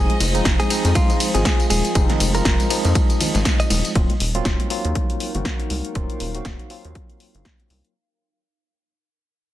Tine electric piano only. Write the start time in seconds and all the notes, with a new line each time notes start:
Already playing: F3 G#3 C4 D#4
0.34 F3 G#3 C4 D#4
0.70 F3 G#3 C4 D#4
1.34 F3 G#3 C4 F4
1.95 F3 G#3 C4 D#4
2.35 F3 G#3 C4 F4
2.70 F3 G#3 C4 D#4
3.95 F#3 A#3 C4 F4
4.35 F#3 A#3 C4 F4
4.70 F#3 A#3 C4 F4
5.34 F#3 A#3 C4 F#4
5.95 F#3 A#3 C4 F4
6.35 F#3 A#3 C4 F#4
6.70 F#3 A#3 C4 F4